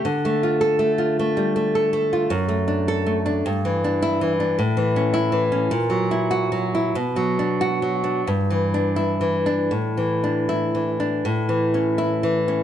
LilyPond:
\new Staff \with { instrumentName = "Nylon-string guitar" } { \time 6/8 \key d \minor \tempo 4. = 52 << { r8. a'8 r4. r16 | \key a \mixolydian r8. a'8 r4 e'8 r16 | r8. e'8 r4 fis'8 r16 | r8. fis'8 r4 e'8 r16 |
r8. e'8 r4 e'8 r16 | } \\ { d16 a16 f'8 a16 f'16 a16 g16 a16 a'16 a16 f'16 | fis,16 a16 d'8 a16 d'16 g,16 e16 d'8 e16 d'16 | a,16 e16 cis'8 e16 cis'16 ais,16 fis16 e'8 fis16 e'16 | b,16 fis16 d'8 fis16 d'16 g,16 e16 d'8 e16 d'16 |
a,16 e16 d'8 e16 d'16 a,16 e16 cis'8 e16 cis'16 | } >> }